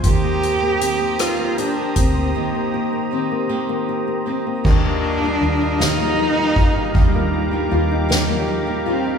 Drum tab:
CC |------|------|x-----|------|
RD |------|------|-xxxxx|xxxxxx|
HH |xxxxxx|------|------|------|
SD |---r--|------|---o--|---o--|
BD |o----o|------|o----o|o-----|